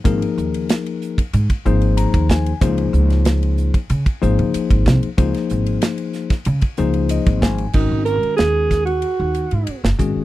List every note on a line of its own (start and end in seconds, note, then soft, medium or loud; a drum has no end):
0.04 0.18 G#1 medium
0.04 1.20 F3 medium
0.04 1.20 A#3 medium
0.04 1.20 D#4 medium
0.04 1.20 G#4 medium
0.04 1.20 A#4 medium
0.04 kick loud
0.04 hi-hat pedal medium
0.04 ride medium
0.22 ride medium
0.38 0.63 D#2 medium
0.38 hi-hat pedal medium
0.54 ride medium
0.69 snare loud
0.69 hi-hat pedal medium
0.69 ride medium
0.86 ride medium
1.02 hi-hat pedal medium
1.18 kick medium
1.18 ride medium
1.33 1.47 G#2 medium
1.33 hi-hat pedal medium
1.33 ride medium
1.50 kick medium
1.50 ride medium
1.65 2.04 G#1 medium
1.65 2.52 F3 medium
1.65 2.52 A#3 medium
1.65 2.52 D#4 medium
1.65 2.52 G#4 medium
1.65 2.52 C5 loud
1.65 hi-hat pedal medium
1.82 ride medium
1.97 2.27 A#5 medium
1.97 hi-hat pedal medium
1.97 ride medium
2.14 2.51 D#2 medium
2.14 kick medium
2.14 ride medium
2.29 2.59 G#5 medium
2.29 kick medium
2.29 snare loud
2.29 hi-hat pedal medium
2.46 ride medium
2.61 2.87 C#2 loud
2.61 3.76 F3 medium
2.61 3.76 A#3 medium
2.61 3.76 D#4 medium
2.61 3.77 G#4 medium
2.61 3.77 C5 medium
2.61 kick loud
2.61 hi-hat pedal medium
2.61 ride medium
2.78 ride medium
2.93 3.69 C#2 medium
2.93 hi-hat pedal medium
3.10 snare soft
3.10 ride medium
3.25 snare loud
3.25 hi-hat pedal medium
3.25 ride medium
3.43 ride medium
3.57 hi-hat pedal medium
3.74 kick medium
3.74 ride medium
3.90 4.03 C#3 loud
3.90 hi-hat pedal medium
3.90 ride medium
4.06 muted upright bass stroke soft
4.06 kick medium
4.06 ride medium
4.22 4.35 G#1 medium
4.22 5.08 F3 medium
4.22 5.08 A#3 medium
4.22 5.08 D#4 medium
4.22 5.08 G#4 medium
4.22 5.08 C5 medium
4.22 hi-hat pedal medium
4.39 4.51 C#3 medium
4.39 ride medium
4.54 muted upright bass stroke soft
4.54 hi-hat pedal medium
4.54 ride medium
4.70 4.83 G#1 medium
4.70 kick medium
4.70 ride medium
4.86 4.99 C2 medium
4.86 kick medium
4.86 snare loud
4.86 hi-hat pedal medium
5.03 muted upright bass stroke soft
5.03 ride medium
5.18 5.31 C#2 medium
5.18 6.33 F3 medium
5.18 6.33 A#3 medium
5.18 6.33 D#4 medium
5.18 6.33 G#4 medium
5.18 6.33 C5 medium
5.18 kick loud
5.18 hi-hat pedal medium
5.18 ride medium
5.34 snare soft
5.34 ride medium
5.50 5.76 G#1 medium
5.50 hi-hat pedal medium
5.66 ride medium
5.82 snare loud
5.82 hi-hat pedal medium
5.82 ride medium
5.98 ride medium
6.13 snare soft
6.13 hi-hat pedal medium
6.30 kick medium
6.30 snare soft
6.30 ride medium
6.45 6.59 C#3 loud
6.45 hi-hat pedal medium
6.45 ride medium
6.61 kick medium
6.61 ride medium
6.77 7.17 C#2 medium
6.77 7.64 F3 medium
6.77 7.64 A#3 medium
6.77 7.65 D#4 medium
6.77 7.65 G#4 medium
6.77 7.65 C5 medium
6.77 hi-hat pedal medium
6.94 ride medium
7.09 7.40 D#5 medium
7.09 hi-hat pedal medium
7.09 ride medium
7.26 7.64 G#1 medium
7.26 kick medium
7.26 ride medium
7.42 7.72 G#5 medium
7.42 kick medium
7.42 snare loud
7.42 hi-hat pedal medium
7.58 ride medium
7.73 7.87 G#1 medium
7.73 8.89 D#3 medium
7.73 8.89 G#3 medium
7.73 8.89 C#4 medium
7.73 8.04 D#4 medium
7.73 8.90 F#4 medium
7.73 8.90 A#4 medium
7.73 kick medium
7.73 crash medium
7.92 8.17 G#1 medium
8.05 8.36 A#4 medium
8.05 hi-hat pedal medium
8.05 ride soft
8.23 muted upright bass stroke soft
8.23 ride soft
8.37 9.03 D#2 medium
8.37 8.83 G#4 medium
8.37 snare loud
8.37 ride medium
8.71 kick medium
8.71 snare soft
8.71 hi-hat pedal medium
8.71 ride soft
8.85 9.79 F#4 medium
8.85 ride soft
9.02 ride medium
9.20 9.45 D#2 medium
9.34 hi-hat pedal medium
9.34 ride soft
9.51 9.64 G#2 medium
9.51 ride soft
9.67 muted upright bass stroke soft
9.67 ride medium
9.84 9.96 F#1 medium
9.84 snare medium
9.99 10.12 G#1 medium
9.99 10.24 D#3 medium
9.99 10.24 G#3 medium
9.99 10.24 C#4 medium
9.99 10.24 F#4 medium
9.99 10.24 G#4 medium
9.99 kick medium
9.99 hi-hat pedal medium
9.99 ride medium
10.16 muted upright bass stroke soft